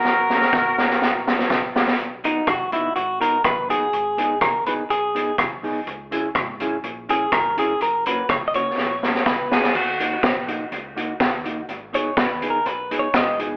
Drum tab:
CC |----------------|----------------|----------------|----------------|
HH |----------------|x-x-x-x-x-x-x-x-|x-x-x-x-x-x-x-o-|x-x-x-x-x-x-x-x-|
SD |o-ooo-ooo-ooo-oo|----r-------r---|----r-------r---|----r-------r---|
BD |----o-------o---|----o-------o---|----o-------o---|----o-------o---|

CC |----------------|x---------------|----------------|
HH |x-x-x-x---------|--x-x-x-x-x-x-x-|x-x-x-x-x-x-x-x-|
SD |----r---o-ooo-oo|----o-------o---|----o-------o---|
BD |----o-------o---|----o-------o---|----o-------o---|